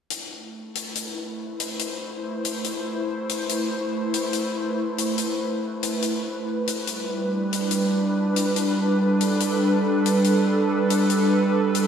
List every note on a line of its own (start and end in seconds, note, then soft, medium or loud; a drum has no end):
0.10 6.87 A3 medium
0.10 closed hi-hat soft
0.43 8.50 E4 medium
0.75 closed hi-hat medium
0.80 11.87 B4 medium
0.95 closed hi-hat soft
1.31 6.87 C5 medium
1.60 closed hi-hat medium
1.79 closed hi-hat medium
2.45 closed hi-hat medium
2.64 closed hi-hat soft
3.29 closed hi-hat medium
3.49 closed hi-hat medium
4.14 closed hi-hat medium
4.33 closed hi-hat soft
4.98 closed hi-hat medium
5.18 closed hi-hat medium
5.83 closed hi-hat medium
6.02 closed hi-hat soft
6.67 closed hi-hat medium
6.86 11.87 G3 medium
6.86 closed hi-hat soft
7.17 11.87 D4 medium
7.53 closed hi-hat soft
7.71 closed hi-hat medium
8.36 closed hi-hat medium
8.56 closed hi-hat medium
8.78 11.87 A4 medium
9.21 closed hi-hat medium
9.40 closed hi-hat medium
10.06 closed hi-hat medium
10.24 closed hi-hat soft
10.90 closed hi-hat medium
11.10 closed hi-hat medium
11.75 closed hi-hat medium